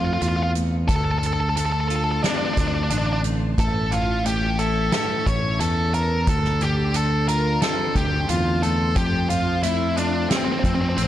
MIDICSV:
0, 0, Header, 1, 6, 480
1, 0, Start_track
1, 0, Key_signature, -1, "minor"
1, 0, Tempo, 672646
1, 632, Time_signature, 4, 2, 24, 8
1, 7904, End_track
2, 0, Start_track
2, 0, Title_t, "String section"
2, 0, Program_c, 0, 48
2, 622, Note_on_c, 0, 77, 66
2, 623, Note_on_c, 0, 84, 75
2, 624, Note_on_c, 0, 74, 66
2, 624, Note_on_c, 0, 81, 70
2, 2532, Note_off_c, 0, 77, 0
2, 2533, Note_off_c, 0, 74, 0
2, 2533, Note_off_c, 0, 84, 0
2, 2548, Note_on_c, 0, 73, 70
2, 2550, Note_on_c, 0, 76, 66
2, 2550, Note_on_c, 0, 85, 79
2, 4452, Note_off_c, 0, 73, 0
2, 4453, Note_off_c, 0, 85, 0
2, 4454, Note_off_c, 0, 76, 0
2, 4471, Note_on_c, 0, 84, 85
2, 4472, Note_on_c, 0, 74, 70
2, 6371, Note_off_c, 0, 74, 0
2, 6400, Note_on_c, 0, 72, 69
2, 7904, Note_off_c, 0, 72, 0
2, 7904, Note_off_c, 0, 81, 0
2, 7904, Note_off_c, 0, 84, 0
2, 7904, End_track
3, 0, Start_track
3, 0, Title_t, "Lead electric guitar"
3, 0, Program_c, 1, 29
3, 37, Note_on_c, 1, 65, 55
3, 91, Note_off_c, 1, 65, 0
3, 95, Note_on_c, 1, 65, 64
3, 149, Note_off_c, 1, 65, 0
3, 156, Note_on_c, 1, 65, 58
3, 201, Note_off_c, 1, 65, 0
3, 204, Note_on_c, 1, 65, 59
3, 257, Note_off_c, 1, 65, 0
3, 260, Note_on_c, 1, 65, 53
3, 303, Note_off_c, 1, 65, 0
3, 306, Note_on_c, 1, 65, 59
3, 359, Note_off_c, 1, 65, 0
3, 627, Note_on_c, 1, 69, 100
3, 681, Note_off_c, 1, 69, 0
3, 683, Note_on_c, 1, 69, 73
3, 739, Note_off_c, 1, 69, 0
3, 746, Note_on_c, 1, 69, 87
3, 792, Note_off_c, 1, 69, 0
3, 794, Note_on_c, 1, 69, 70
3, 843, Note_off_c, 1, 69, 0
3, 846, Note_on_c, 1, 69, 83
3, 900, Note_off_c, 1, 69, 0
3, 903, Note_on_c, 1, 69, 76
3, 948, Note_off_c, 1, 69, 0
3, 950, Note_on_c, 1, 69, 94
3, 998, Note_off_c, 1, 69, 0
3, 1001, Note_on_c, 1, 69, 81
3, 1056, Note_off_c, 1, 69, 0
3, 1067, Note_on_c, 1, 69, 92
3, 1114, Note_off_c, 1, 69, 0
3, 1116, Note_on_c, 1, 69, 78
3, 1172, Note_off_c, 1, 69, 0
3, 1182, Note_on_c, 1, 69, 93
3, 1227, Note_off_c, 1, 69, 0
3, 1230, Note_on_c, 1, 69, 71
3, 1285, Note_off_c, 1, 69, 0
3, 1288, Note_on_c, 1, 69, 88
3, 1340, Note_off_c, 1, 69, 0
3, 1343, Note_on_c, 1, 69, 73
3, 1393, Note_off_c, 1, 69, 0
3, 1396, Note_on_c, 1, 69, 87
3, 1451, Note_off_c, 1, 69, 0
3, 1455, Note_on_c, 1, 69, 69
3, 1506, Note_off_c, 1, 69, 0
3, 1509, Note_on_c, 1, 69, 77
3, 1564, Note_off_c, 1, 69, 0
3, 1591, Note_on_c, 1, 62, 75
3, 1640, Note_off_c, 1, 62, 0
3, 1643, Note_on_c, 1, 62, 57
3, 1695, Note_off_c, 1, 62, 0
3, 1698, Note_on_c, 1, 62, 70
3, 1746, Note_off_c, 1, 62, 0
3, 1749, Note_on_c, 1, 62, 64
3, 1802, Note_off_c, 1, 62, 0
3, 1808, Note_on_c, 1, 62, 70
3, 1856, Note_off_c, 1, 62, 0
3, 1859, Note_on_c, 1, 62, 63
3, 1908, Note_off_c, 1, 62, 0
3, 1911, Note_on_c, 1, 62, 70
3, 1956, Note_off_c, 1, 62, 0
3, 1959, Note_on_c, 1, 62, 68
3, 2012, Note_off_c, 1, 62, 0
3, 2022, Note_on_c, 1, 62, 78
3, 2070, Note_off_c, 1, 62, 0
3, 2073, Note_on_c, 1, 62, 60
3, 2125, Note_off_c, 1, 62, 0
3, 2128, Note_on_c, 1, 62, 68
3, 2182, Note_off_c, 1, 62, 0
3, 2186, Note_on_c, 1, 62, 55
3, 2229, Note_off_c, 1, 62, 0
3, 2231, Note_on_c, 1, 62, 68
3, 2285, Note_off_c, 1, 62, 0
3, 2565, Note_on_c, 1, 69, 95
3, 2801, Note_on_c, 1, 65, 82
3, 2808, Note_off_c, 1, 69, 0
3, 3022, Note_off_c, 1, 65, 0
3, 3044, Note_on_c, 1, 67, 100
3, 3274, Note_on_c, 1, 69, 93
3, 3287, Note_off_c, 1, 67, 0
3, 3508, Note_off_c, 1, 69, 0
3, 3516, Note_on_c, 1, 69, 89
3, 3756, Note_on_c, 1, 73, 90
3, 3764, Note_off_c, 1, 69, 0
3, 3979, Note_off_c, 1, 73, 0
3, 3999, Note_on_c, 1, 69, 83
3, 4240, Note_off_c, 1, 69, 0
3, 4243, Note_on_c, 1, 70, 94
3, 4486, Note_off_c, 1, 70, 0
3, 4489, Note_on_c, 1, 69, 105
3, 4723, Note_on_c, 1, 67, 82
3, 4729, Note_off_c, 1, 69, 0
3, 4966, Note_off_c, 1, 67, 0
3, 4968, Note_on_c, 1, 69, 91
3, 5195, Note_off_c, 1, 69, 0
3, 5198, Note_on_c, 1, 70, 89
3, 5435, Note_off_c, 1, 70, 0
3, 5438, Note_on_c, 1, 69, 93
3, 5682, Note_on_c, 1, 67, 82
3, 5683, Note_off_c, 1, 69, 0
3, 5917, Note_off_c, 1, 67, 0
3, 5920, Note_on_c, 1, 65, 79
3, 6140, Note_off_c, 1, 65, 0
3, 6156, Note_on_c, 1, 69, 84
3, 6393, Note_on_c, 1, 67, 96
3, 6401, Note_off_c, 1, 69, 0
3, 6630, Note_off_c, 1, 67, 0
3, 6632, Note_on_c, 1, 65, 78
3, 6870, Note_off_c, 1, 65, 0
3, 6873, Note_on_c, 1, 64, 87
3, 7108, Note_on_c, 1, 62, 83
3, 7118, Note_off_c, 1, 64, 0
3, 7345, Note_off_c, 1, 62, 0
3, 7348, Note_on_c, 1, 60, 74
3, 7395, Note_off_c, 1, 60, 0
3, 7398, Note_on_c, 1, 60, 52
3, 7451, Note_off_c, 1, 60, 0
3, 7456, Note_on_c, 1, 60, 64
3, 7506, Note_off_c, 1, 60, 0
3, 7509, Note_on_c, 1, 60, 58
3, 7557, Note_off_c, 1, 60, 0
3, 7560, Note_on_c, 1, 60, 63
3, 7602, Note_off_c, 1, 60, 0
3, 7605, Note_on_c, 1, 60, 61
3, 7658, Note_off_c, 1, 60, 0
3, 7669, Note_on_c, 1, 60, 68
3, 7714, Note_off_c, 1, 60, 0
3, 7717, Note_on_c, 1, 60, 56
3, 7770, Note_off_c, 1, 60, 0
3, 7773, Note_on_c, 1, 60, 68
3, 7826, Note_off_c, 1, 60, 0
3, 7826, Note_on_c, 1, 72, 76
3, 7831, Note_on_c, 1, 60, 54
3, 7869, Note_off_c, 1, 60, 0
3, 7872, Note_on_c, 1, 60, 66
3, 7882, Note_off_c, 1, 72, 0
3, 7904, Note_off_c, 1, 60, 0
3, 7904, End_track
4, 0, Start_track
4, 0, Title_t, "Clean electric guitar"
4, 0, Program_c, 2, 27
4, 0, Note_on_c, 2, 53, 64
4, 0, Note_on_c, 2, 57, 56
4, 0, Note_on_c, 2, 60, 66
4, 0, Note_on_c, 2, 65, 71
4, 150, Note_off_c, 2, 53, 0
4, 396, Note_off_c, 2, 57, 0
4, 399, Note_on_c, 2, 57, 59
4, 634, Note_off_c, 2, 60, 0
4, 634, Note_off_c, 2, 65, 0
4, 637, Note_on_c, 2, 50, 66
4, 865, Note_off_c, 2, 50, 0
4, 874, Note_on_c, 2, 50, 65
4, 1112, Note_off_c, 2, 57, 0
4, 1115, Note_on_c, 2, 57, 61
4, 1359, Note_on_c, 2, 65, 69
4, 1597, Note_on_c, 2, 60, 61
4, 1833, Note_off_c, 2, 57, 0
4, 1836, Note_on_c, 2, 57, 60
4, 2064, Note_off_c, 2, 50, 0
4, 2072, Note_on_c, 2, 50, 53
4, 2310, Note_off_c, 2, 57, 0
4, 2313, Note_on_c, 2, 57, 62
4, 2554, Note_off_c, 2, 50, 0
4, 2555, Note_on_c, 2, 45, 69
4, 2557, Note_off_c, 2, 60, 0
4, 2558, Note_off_c, 2, 65, 0
4, 2795, Note_on_c, 2, 52, 64
4, 3028, Note_off_c, 2, 57, 0
4, 3031, Note_on_c, 2, 57, 67
4, 3278, Note_on_c, 2, 64, 70
4, 3518, Note_on_c, 2, 61, 64
4, 3756, Note_off_c, 2, 45, 0
4, 3986, Note_off_c, 2, 52, 0
4, 3995, Note_on_c, 2, 52, 57
4, 4471, Note_off_c, 2, 52, 0
4, 4474, Note_on_c, 2, 50, 69
4, 4476, Note_off_c, 2, 61, 0
4, 4477, Note_off_c, 2, 64, 0
4, 4711, Note_off_c, 2, 50, 0
4, 4719, Note_on_c, 2, 50, 69
4, 5199, Note_on_c, 2, 65, 67
4, 5440, Note_on_c, 2, 60, 64
4, 5529, Note_off_c, 2, 57, 0
4, 5681, Note_on_c, 2, 57, 59
4, 5915, Note_off_c, 2, 50, 0
4, 5923, Note_on_c, 2, 50, 61
4, 6160, Note_off_c, 2, 57, 0
4, 6163, Note_on_c, 2, 57, 63
4, 6394, Note_off_c, 2, 50, 0
4, 6397, Note_on_c, 2, 53, 77
4, 6630, Note_off_c, 2, 53, 0
4, 6638, Note_on_c, 2, 53, 74
4, 6874, Note_off_c, 2, 57, 0
4, 6877, Note_on_c, 2, 57, 76
4, 7115, Note_off_c, 2, 65, 0
4, 7117, Note_on_c, 2, 65, 74
4, 7349, Note_off_c, 2, 60, 0
4, 7352, Note_on_c, 2, 60, 65
4, 7587, Note_off_c, 2, 57, 0
4, 7596, Note_on_c, 2, 57, 57
4, 7825, Note_off_c, 2, 53, 0
4, 7833, Note_on_c, 2, 53, 62
4, 7904, Note_off_c, 2, 53, 0
4, 7904, Note_off_c, 2, 57, 0
4, 7904, Note_off_c, 2, 60, 0
4, 7904, Note_off_c, 2, 65, 0
4, 7904, End_track
5, 0, Start_track
5, 0, Title_t, "Fingered electric bass"
5, 0, Program_c, 3, 33
5, 0, Note_on_c, 3, 41, 80
5, 135, Note_off_c, 3, 41, 0
5, 155, Note_on_c, 3, 40, 90
5, 631, Note_off_c, 3, 40, 0
5, 631, Note_on_c, 3, 38, 90
5, 1566, Note_off_c, 3, 38, 0
5, 1837, Note_on_c, 3, 38, 91
5, 2062, Note_off_c, 3, 38, 0
5, 2075, Note_on_c, 3, 33, 93
5, 2527, Note_off_c, 3, 33, 0
5, 2554, Note_on_c, 3, 33, 91
5, 3487, Note_off_c, 3, 33, 0
5, 3757, Note_on_c, 3, 33, 90
5, 3982, Note_off_c, 3, 33, 0
5, 4000, Note_on_c, 3, 40, 89
5, 4478, Note_off_c, 3, 40, 0
5, 4478, Note_on_c, 3, 38, 93
5, 5407, Note_off_c, 3, 38, 0
5, 5675, Note_on_c, 3, 38, 93
5, 5899, Note_off_c, 3, 38, 0
5, 5920, Note_on_c, 3, 40, 84
5, 6393, Note_off_c, 3, 40, 0
5, 6393, Note_on_c, 3, 41, 97
5, 7321, Note_off_c, 3, 41, 0
5, 7591, Note_on_c, 3, 41, 101
5, 7814, Note_off_c, 3, 41, 0
5, 7825, Note_on_c, 3, 33, 87
5, 7904, Note_off_c, 3, 33, 0
5, 7904, End_track
6, 0, Start_track
6, 0, Title_t, "Drums"
6, 153, Note_on_c, 9, 42, 76
6, 225, Note_off_c, 9, 42, 0
6, 394, Note_on_c, 9, 42, 60
6, 465, Note_off_c, 9, 42, 0
6, 633, Note_on_c, 9, 36, 100
6, 634, Note_on_c, 9, 42, 83
6, 705, Note_off_c, 9, 36, 0
6, 706, Note_off_c, 9, 42, 0
6, 877, Note_on_c, 9, 42, 65
6, 948, Note_off_c, 9, 42, 0
6, 1119, Note_on_c, 9, 42, 88
6, 1190, Note_off_c, 9, 42, 0
6, 1357, Note_on_c, 9, 42, 63
6, 1428, Note_off_c, 9, 42, 0
6, 1598, Note_on_c, 9, 38, 93
6, 1598, Note_on_c, 9, 42, 85
6, 1669, Note_off_c, 9, 38, 0
6, 1669, Note_off_c, 9, 42, 0
6, 1834, Note_on_c, 9, 42, 68
6, 1835, Note_on_c, 9, 36, 69
6, 1905, Note_off_c, 9, 42, 0
6, 1907, Note_off_c, 9, 36, 0
6, 2072, Note_on_c, 9, 42, 98
6, 2143, Note_off_c, 9, 42, 0
6, 2312, Note_on_c, 9, 42, 65
6, 2383, Note_off_c, 9, 42, 0
6, 2555, Note_on_c, 9, 36, 102
6, 2555, Note_on_c, 9, 42, 98
6, 2626, Note_off_c, 9, 36, 0
6, 2626, Note_off_c, 9, 42, 0
6, 2796, Note_on_c, 9, 42, 62
6, 2868, Note_off_c, 9, 42, 0
6, 3037, Note_on_c, 9, 42, 93
6, 3108, Note_off_c, 9, 42, 0
6, 3274, Note_on_c, 9, 42, 57
6, 3346, Note_off_c, 9, 42, 0
6, 3512, Note_on_c, 9, 38, 89
6, 3512, Note_on_c, 9, 42, 83
6, 3583, Note_off_c, 9, 38, 0
6, 3583, Note_off_c, 9, 42, 0
6, 3757, Note_on_c, 9, 36, 75
6, 3759, Note_on_c, 9, 42, 62
6, 3828, Note_off_c, 9, 36, 0
6, 3831, Note_off_c, 9, 42, 0
6, 3998, Note_on_c, 9, 42, 83
6, 4070, Note_off_c, 9, 42, 0
6, 4237, Note_on_c, 9, 42, 60
6, 4309, Note_off_c, 9, 42, 0
6, 4475, Note_on_c, 9, 42, 85
6, 4477, Note_on_c, 9, 36, 96
6, 4546, Note_off_c, 9, 42, 0
6, 4548, Note_off_c, 9, 36, 0
6, 4598, Note_on_c, 9, 38, 31
6, 4669, Note_off_c, 9, 38, 0
6, 4715, Note_on_c, 9, 42, 56
6, 4787, Note_off_c, 9, 42, 0
6, 4953, Note_on_c, 9, 42, 88
6, 5024, Note_off_c, 9, 42, 0
6, 5198, Note_on_c, 9, 42, 66
6, 5270, Note_off_c, 9, 42, 0
6, 5436, Note_on_c, 9, 38, 88
6, 5436, Note_on_c, 9, 42, 82
6, 5508, Note_off_c, 9, 38, 0
6, 5508, Note_off_c, 9, 42, 0
6, 5676, Note_on_c, 9, 36, 75
6, 5677, Note_on_c, 9, 42, 71
6, 5747, Note_off_c, 9, 36, 0
6, 5748, Note_off_c, 9, 42, 0
6, 5914, Note_on_c, 9, 42, 96
6, 5985, Note_off_c, 9, 42, 0
6, 6158, Note_on_c, 9, 42, 70
6, 6230, Note_off_c, 9, 42, 0
6, 6392, Note_on_c, 9, 42, 91
6, 6394, Note_on_c, 9, 36, 101
6, 6464, Note_off_c, 9, 42, 0
6, 6466, Note_off_c, 9, 36, 0
6, 6637, Note_on_c, 9, 42, 67
6, 6708, Note_off_c, 9, 42, 0
6, 6874, Note_on_c, 9, 42, 101
6, 6946, Note_off_c, 9, 42, 0
6, 7117, Note_on_c, 9, 42, 66
6, 7188, Note_off_c, 9, 42, 0
6, 7354, Note_on_c, 9, 38, 89
6, 7354, Note_on_c, 9, 42, 83
6, 7426, Note_off_c, 9, 38, 0
6, 7426, Note_off_c, 9, 42, 0
6, 7591, Note_on_c, 9, 36, 70
6, 7596, Note_on_c, 9, 42, 59
6, 7662, Note_off_c, 9, 36, 0
6, 7668, Note_off_c, 9, 42, 0
6, 7832, Note_on_c, 9, 42, 83
6, 7904, Note_off_c, 9, 42, 0
6, 7904, End_track
0, 0, End_of_file